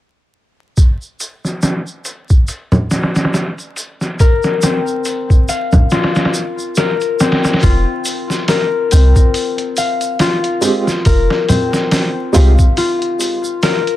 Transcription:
0.77 kick, open hi-hat, shaker
1.02 shaker
1.20 open hi-hat, shaker
1.45 snare, shaker
1.62 snare, open hi-hat, shaker
1.87 shaker
2.05 open hi-hat, shaker
2.29 kick, shaker
2.48 open hi-hat, shaker
2.72 closed hi-hat, low conga, shaker
2.91 snare, open hi-hat, shaker
3.03 snare, open hi-hat
3.15 snare, open hi-hat, shaker
3.25 snare, open hi-hat
3.34 snare, open hi-hat, shaker
3.58 closed hi-hat, shaker
3.76 open hi-hat, shaker
4.01 snare, shaker
4.19 A#4, kick, open hi-hat, shaker
4.43 snare, shaker
4.62 C4, snare, open hi-hat, shaker
4.87 shaker
5.05 open hi-hat, shaker
5.30 kick, shaker
5.49 F5, open hi-hat, shaker
5.72 kick, low conga, shaker
5.90 F4, snare, open hi-hat, shaker
6.04 snare, open hi-hat
6.15 snare, open hi-hat, shaker
6.25 snare, open hi-hat
6.34 shaker
6.59 shaker
6.76 A#4, snare, open hi-hat, shaker
7.01 closed hi-hat, shaker
7.20 C4, snare, open hi-hat, shaker
7.32 snare, open hi-hat
7.44 snare, open hi-hat, shaker
7.53 snare, open hi-hat
7.62 F1 F4, kick, open hi-hat, shaker
8.05 open hi-hat, shaker
8.30 snare, shaker
8.48 A#4, snare, open hi-hat, shaker
8.91 C2 C4, open hi-hat, shaker
9.16 kick, shaker
9.34 open hi-hat, shaker
9.58 closed hi-hat
9.77 F5, open hi-hat, shaker
10.01 closed hi-hat, shaker
10.19 F4, snare, open hi-hat, shaker
10.44 closed hi-hat
10.61 G#3 C4 F4 G4, open hi-hat, shaker
10.87 snare, shaker
11.05 F1 A#4, kick, open hi-hat, shaker
11.30 snare
11.49 C4, open hi-hat, low conga, shaker
11.73 snare, shaker
11.91 snare, open hi-hat, shaker
12.33 C2 G#3 C4 F4 G4 F5, open hi-hat, shaker
12.59 kick, shaker
12.77 F4, open hi-hat, shaker
13.02 closed hi-hat
13.20 open hi-hat, shaker
13.44 shaker
13.63 A#4, snare, open hi-hat, shaker
13.87 closed hi-hat

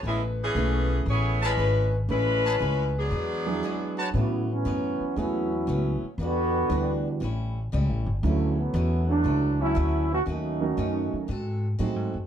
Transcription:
0.03 A1 G#3 A3 C#4 E4 G#4
0.07 B3 B4
0.42 E3 B3 C#4 G#4
0.55 B1 A3 C#4 G#4 B4
1.06 A1 A3 C#4 E4 G#4
1.10 B3 B4 C#5
1.41 G#3 C#4 E4 G#4 B4 C#5 A5
1.57 G#1 A3 C#4 G#4 B4
2.09 A1 G#3 A3 C#4 E4 G#4 B4
2.44 G#4 B4 C#5 A5
2.59 C#2 A3 C#4 G#4 B4
2.98 F#3 B3 D4 G#4
3.11 E2 E3 G#3 D4 F#4
3.46 F#3 D4 E4 G#4
3.63 E3 G#3 D4 F#4
3.98 F#4 B4 C#5 A5
4.14 A2 C#3 E3 F#3 A3 B3 C#4 F#4
4.50 E3 F#3 B3 C#4
4.65 F#2 A2 F#3 B3 C#4
5.00 muted upright bass stroke
5.16 E2 A2 E3 F#3 A3 B3 C#4 E4 G#4
5.67 C#2 A2 F#3 B3 C#4
6.02 muted upright bass stroke
6.18 E2 D3 E3 G3 B3 D4 F#4
6.23 F#4
6.69 D2 E3 G3 B3 D4 F#4
7.20 A1 A2 G3 C#4 E4
7.72 C#2 A2 G3 C#4 E4
7.89 A1
8.06 G1
8.23 D2 C#3 D3 E3 F#3 A3 C#4 E4
8.57 E3 F#3 A3 B3
8.74 E2 D3 F#3 C#4 E4
9.07 E3 F#3 A3 D4
9.24 C#2 D3 F#3 C#4 E4
9.60 F#3 A3 C#4 E4
9.75 D2 D3 F#3 C#4 E4
10.11 E3 A3 C#4 F#4
10.26 D#2 D#3 F#3 A3 C#4 D#4 F#4
10.61 D#3 F#3 A3 C#4 F#4
10.77 F#2 D#3 A3 C#4 F#4
11.13 muted upright bass stroke
11.28 G#2 G#3 C4 F#4 A4
11.79 A2 F#3 G#3 A3 C4 D#4 F#4 G#4 A4
11.96 G#2
12.14 F#2

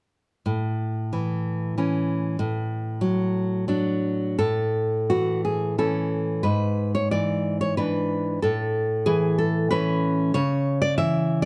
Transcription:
0.46 A2
1.13 E3
1.78 E3 C#4
2.39 A2
3.01 F#3
3.68 F#3 D4
4.39 A2 A4
5.10 E3 F#4
5.45 G#4
5.78 E3 C#4 A4
6.43 G#2 B4
6.95 C#5
7.11 E3 D5
7.61 C#5
7.77 E3 D4 B4
8.42 A2 A4
9.06 E3 G#4
9.38 A4
9.71 E3 C#4 B4
10.34 C#3 C#5
10.82 D5
10.98 E3 E5

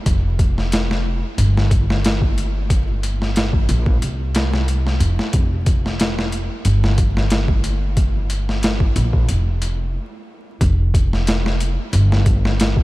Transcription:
0.06 F1, kick, closed hi-hat
0.39 kick, closed hi-hat
0.58 snare
0.72 snare, closed hi-hat
0.91 snare
1.38 G1, closed hi-hat
1.57 snare
1.71 kick, closed hi-hat
1.90 snare
2.04 snare, closed hi-hat
2.22 kick
2.38 closed hi-hat
2.70 kick, closed hi-hat
3.03 closed hi-hat
3.22 snare
3.36 snare, closed hi-hat
3.53 kick
3.69 A#1, closed hi-hat
3.86 kick
4.02 C2, closed hi-hat
4.35 snare, closed hi-hat
4.53 snare
4.68 closed hi-hat
4.87 snare
5.00 F1, closed hi-hat
5.19 snare
5.33 F1, kick, closed hi-hat
5.66 kick, closed hi-hat
5.86 snare
6.00 snare, closed hi-hat
6.19 snare
6.32 closed hi-hat
6.65 G1, closed hi-hat
6.84 snare
6.98 kick, closed hi-hat
7.17 snare
7.30 snare, closed hi-hat
7.48 kick
7.64 closed hi-hat
7.97 kick, closed hi-hat
8.30 closed hi-hat
8.49 snare
8.63 snare, closed hi-hat
8.80 kick
8.96 A#1, closed hi-hat
9.13 kick
9.29 F1, closed hi-hat
9.62 closed hi-hat
10.61 F1, kick, closed hi-hat
10.94 kick, closed hi-hat
11.13 snare
11.27 snare, closed hi-hat
11.46 snare
11.60 closed hi-hat
11.93 G1, closed hi-hat
12.12 snare
12.26 kick, closed hi-hat
12.45 snare
12.60 snare, closed hi-hat
12.77 kick

